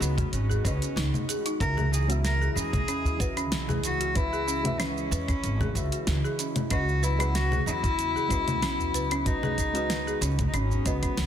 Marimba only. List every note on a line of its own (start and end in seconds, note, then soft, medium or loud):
0.18 0.32 F#4 medium
0.50 0.63 G#4 medium
0.65 0.80 C#4 medium
0.97 1.12 D#4 medium
1.29 1.45 G#4 medium
1.46 1.59 D#4 medium
1.77 1.92 G#4 medium
2.09 2.24 F#4 medium
2.42 2.55 G#4 medium
2.56 2.72 C#4 medium
2.88 3.19 C#4 loud
3.20 3.30 B4 medium
3.37 3.46 C#4 loud
3.69 3.83 G#4 medium
4.01 4.15 F#4 medium
4.33 4.46 G#4 medium
4.48 4.64 C#4 medium
4.80 5.10 C#4 loud
5.12 5.21 B4 medium
5.29 5.37 C#4 medium
5.61 5.75 G#4 medium
5.93 6.07 F#4 medium
6.24 6.38 G#4 medium
6.39 6.55 C#4 medium
6.71 7.02 C#4 loud
7.03 7.13 B4 medium
7.20 7.29 C#4 loud
7.52 7.66 G#4 medium
7.84 7.98 F#4 medium
8.16 8.29 G#4 medium
8.31 8.47 C#4 medium
8.63 8.93 C#4 loud
8.95 9.04 B4 medium
9.12 9.20 C#4 loud
9.43 9.58 G#4 medium
9.75 9.89 F#4 medium
10.07 10.21 G#4 medium
10.22 10.38 C#4 medium
10.54 10.69 C#4 loud
10.86 11.01 C#4 medium
11.03 11.16 C#4 medium